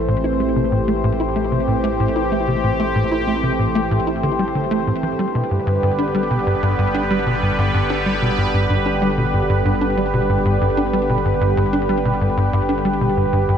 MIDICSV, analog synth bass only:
0, 0, Header, 1, 2, 480
1, 0, Start_track
1, 0, Tempo, 638298
1, 62, Time_signature, 4, 2, 24, 8
1, 10211, End_track
2, 0, Start_track
2, 0, Title_t, "Analog synth bass"
2, 0, Program_c, 0, 38
2, 62, Note_on_c, 0, 45, 93
2, 122, Note_off_c, 0, 45, 0
2, 182, Note_on_c, 0, 64, 70
2, 242, Note_off_c, 0, 64, 0
2, 302, Note_on_c, 0, 57, 71
2, 362, Note_off_c, 0, 57, 0
2, 422, Note_on_c, 0, 48, 71
2, 483, Note_off_c, 0, 48, 0
2, 541, Note_on_c, 0, 45, 77
2, 602, Note_off_c, 0, 45, 0
2, 661, Note_on_c, 0, 57, 90
2, 698, Note_off_c, 0, 57, 0
2, 781, Note_on_c, 0, 45, 98
2, 842, Note_off_c, 0, 45, 0
2, 902, Note_on_c, 0, 64, 75
2, 962, Note_off_c, 0, 64, 0
2, 1021, Note_on_c, 0, 57, 78
2, 1082, Note_off_c, 0, 57, 0
2, 1142, Note_on_c, 0, 48, 75
2, 1202, Note_off_c, 0, 48, 0
2, 1261, Note_on_c, 0, 45, 74
2, 1322, Note_off_c, 0, 45, 0
2, 1382, Note_on_c, 0, 57, 98
2, 1418, Note_off_c, 0, 57, 0
2, 1503, Note_on_c, 0, 45, 94
2, 1563, Note_off_c, 0, 45, 0
2, 1623, Note_on_c, 0, 64, 73
2, 1683, Note_off_c, 0, 64, 0
2, 1744, Note_on_c, 0, 57, 74
2, 1803, Note_off_c, 0, 57, 0
2, 1862, Note_on_c, 0, 48, 71
2, 1923, Note_off_c, 0, 48, 0
2, 1982, Note_on_c, 0, 45, 77
2, 2043, Note_off_c, 0, 45, 0
2, 2103, Note_on_c, 0, 57, 94
2, 2139, Note_off_c, 0, 57, 0
2, 2222, Note_on_c, 0, 45, 97
2, 2282, Note_off_c, 0, 45, 0
2, 2342, Note_on_c, 0, 64, 73
2, 2402, Note_off_c, 0, 64, 0
2, 2461, Note_on_c, 0, 57, 74
2, 2522, Note_off_c, 0, 57, 0
2, 2581, Note_on_c, 0, 48, 72
2, 2642, Note_off_c, 0, 48, 0
2, 2701, Note_on_c, 0, 45, 72
2, 2762, Note_off_c, 0, 45, 0
2, 2822, Note_on_c, 0, 57, 97
2, 2858, Note_off_c, 0, 57, 0
2, 2941, Note_on_c, 0, 45, 98
2, 3002, Note_off_c, 0, 45, 0
2, 3062, Note_on_c, 0, 64, 73
2, 3122, Note_off_c, 0, 64, 0
2, 3182, Note_on_c, 0, 50, 97
2, 3242, Note_off_c, 0, 50, 0
2, 3302, Note_on_c, 0, 55, 73
2, 3339, Note_off_c, 0, 55, 0
2, 3422, Note_on_c, 0, 50, 77
2, 3512, Note_off_c, 0, 50, 0
2, 3542, Note_on_c, 0, 57, 94
2, 3632, Note_off_c, 0, 57, 0
2, 3663, Note_on_c, 0, 45, 74
2, 3699, Note_off_c, 0, 45, 0
2, 3783, Note_on_c, 0, 52, 73
2, 3819, Note_off_c, 0, 52, 0
2, 3903, Note_on_c, 0, 55, 80
2, 3963, Note_off_c, 0, 55, 0
2, 4022, Note_on_c, 0, 47, 73
2, 4082, Note_off_c, 0, 47, 0
2, 4142, Note_on_c, 0, 43, 68
2, 4202, Note_off_c, 0, 43, 0
2, 4261, Note_on_c, 0, 43, 92
2, 4352, Note_off_c, 0, 43, 0
2, 4383, Note_on_c, 0, 43, 92
2, 4443, Note_off_c, 0, 43, 0
2, 4501, Note_on_c, 0, 62, 72
2, 4562, Note_off_c, 0, 62, 0
2, 4621, Note_on_c, 0, 55, 76
2, 4682, Note_off_c, 0, 55, 0
2, 4742, Note_on_c, 0, 47, 73
2, 4802, Note_off_c, 0, 47, 0
2, 4863, Note_on_c, 0, 43, 80
2, 4923, Note_off_c, 0, 43, 0
2, 4983, Note_on_c, 0, 43, 101
2, 5073, Note_off_c, 0, 43, 0
2, 5103, Note_on_c, 0, 43, 96
2, 5163, Note_off_c, 0, 43, 0
2, 5223, Note_on_c, 0, 62, 74
2, 5283, Note_off_c, 0, 62, 0
2, 5343, Note_on_c, 0, 55, 76
2, 5403, Note_off_c, 0, 55, 0
2, 5463, Note_on_c, 0, 47, 69
2, 5523, Note_off_c, 0, 47, 0
2, 5583, Note_on_c, 0, 43, 74
2, 5643, Note_off_c, 0, 43, 0
2, 5703, Note_on_c, 0, 43, 96
2, 5793, Note_off_c, 0, 43, 0
2, 5822, Note_on_c, 0, 43, 96
2, 5883, Note_off_c, 0, 43, 0
2, 5942, Note_on_c, 0, 62, 72
2, 6002, Note_off_c, 0, 62, 0
2, 6062, Note_on_c, 0, 55, 70
2, 6122, Note_off_c, 0, 55, 0
2, 6182, Note_on_c, 0, 47, 73
2, 6242, Note_off_c, 0, 47, 0
2, 6302, Note_on_c, 0, 43, 76
2, 6362, Note_off_c, 0, 43, 0
2, 6422, Note_on_c, 0, 43, 96
2, 6512, Note_off_c, 0, 43, 0
2, 6541, Note_on_c, 0, 43, 97
2, 6602, Note_off_c, 0, 43, 0
2, 6661, Note_on_c, 0, 62, 70
2, 6722, Note_off_c, 0, 62, 0
2, 6781, Note_on_c, 0, 55, 82
2, 6842, Note_off_c, 0, 55, 0
2, 6901, Note_on_c, 0, 47, 73
2, 6962, Note_off_c, 0, 47, 0
2, 7021, Note_on_c, 0, 43, 71
2, 7082, Note_off_c, 0, 43, 0
2, 7140, Note_on_c, 0, 43, 99
2, 7232, Note_off_c, 0, 43, 0
2, 7259, Note_on_c, 0, 43, 98
2, 7321, Note_off_c, 0, 43, 0
2, 7379, Note_on_c, 0, 62, 72
2, 7441, Note_off_c, 0, 62, 0
2, 7501, Note_on_c, 0, 55, 74
2, 7562, Note_off_c, 0, 55, 0
2, 7621, Note_on_c, 0, 47, 71
2, 7682, Note_off_c, 0, 47, 0
2, 7741, Note_on_c, 0, 43, 74
2, 7802, Note_off_c, 0, 43, 0
2, 7861, Note_on_c, 0, 43, 95
2, 7952, Note_off_c, 0, 43, 0
2, 7982, Note_on_c, 0, 43, 91
2, 8042, Note_off_c, 0, 43, 0
2, 8102, Note_on_c, 0, 62, 72
2, 8162, Note_off_c, 0, 62, 0
2, 8222, Note_on_c, 0, 55, 78
2, 8282, Note_off_c, 0, 55, 0
2, 8343, Note_on_c, 0, 47, 70
2, 8403, Note_off_c, 0, 47, 0
2, 8463, Note_on_c, 0, 43, 75
2, 8523, Note_off_c, 0, 43, 0
2, 8582, Note_on_c, 0, 43, 93
2, 8672, Note_off_c, 0, 43, 0
2, 8701, Note_on_c, 0, 43, 98
2, 8762, Note_off_c, 0, 43, 0
2, 8821, Note_on_c, 0, 62, 75
2, 8882, Note_off_c, 0, 62, 0
2, 8942, Note_on_c, 0, 55, 74
2, 9002, Note_off_c, 0, 55, 0
2, 9063, Note_on_c, 0, 47, 77
2, 9123, Note_off_c, 0, 47, 0
2, 9182, Note_on_c, 0, 43, 74
2, 9242, Note_off_c, 0, 43, 0
2, 9303, Note_on_c, 0, 43, 97
2, 9393, Note_off_c, 0, 43, 0
2, 9422, Note_on_c, 0, 43, 104
2, 9482, Note_off_c, 0, 43, 0
2, 9542, Note_on_c, 0, 62, 71
2, 9602, Note_off_c, 0, 62, 0
2, 9662, Note_on_c, 0, 55, 77
2, 9722, Note_off_c, 0, 55, 0
2, 9784, Note_on_c, 0, 47, 71
2, 9843, Note_off_c, 0, 47, 0
2, 9903, Note_on_c, 0, 43, 70
2, 9963, Note_off_c, 0, 43, 0
2, 10022, Note_on_c, 0, 43, 96
2, 10112, Note_off_c, 0, 43, 0
2, 10141, Note_on_c, 0, 43, 93
2, 10202, Note_off_c, 0, 43, 0
2, 10211, End_track
0, 0, End_of_file